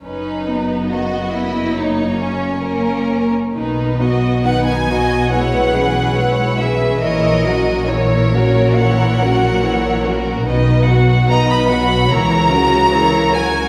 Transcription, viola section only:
X:1
M:4/4
L:1/8
Q:1/4=70
K:B
V:1 name="Viola section"
C B,3 A,2 A,2 | [D,D] [F,B,] [D,D] [F,B,] [G,E] [E,C] [G,E] [E,C] | [E,E] [F,C] [E,E] [F,C] [E,E] [F,C] [E,E] [F,C] | [D,D] [F,B,] [D,D] [F,B,] [E,E] [F,C] [E,E] [F,C] |]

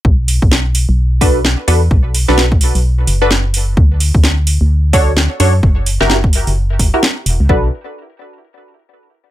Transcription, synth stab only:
X:1
M:4/4
L:1/16
Q:"Swing 16ths" 1/4=129
K:Bm
V:1 name="Synth stab"
z8 z2 [DFAB] z3 [DFAB] z | z3 [DFAB] z6 z [DFAB] z4 | z8 z2 [DFAc] z3 [DFAc] z | z3 [EFG^A] z6 z [EFGA] z4 |
[DFAB]2 z12 z2 |]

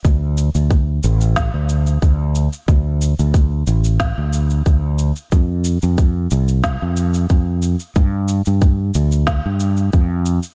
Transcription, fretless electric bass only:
X:1
M:4/4
L:1/16
Q:1/4=91
K:Dm
V:1 name="Fretless electric bass" clef=bass
D,,3 D,,3 A,,,3 D,,3 D,,3 z | D,,3 D,,3 A,,,3 D,,3 D,,3 z | F,,3 F,,3 C,,3 F,,3 F,,3 z | G,,3 G,,3 D,,3 G,,3 F,,3 z |]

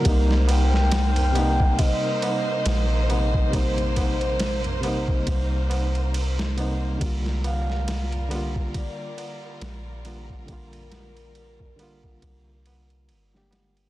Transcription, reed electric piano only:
X:1
M:4/4
L:1/16
Q:"Swing 16ths" 1/4=69
K:Cm
V:1 name="Reed electric piano" clef=bass
[C,G,B,E]6 [C,G,B,E]8 [C,G,B,E]2 | [C,G,B,E]6 [C,G,B,E]8 [C,G,B,E]2 | [D,G,B,F]6 [D,G,B,F]8 [D,G,B,F]2 | [D,G,B,F]6 [D,G,B,F]6- [D,G,B,F] [D,G,B,G]3 |]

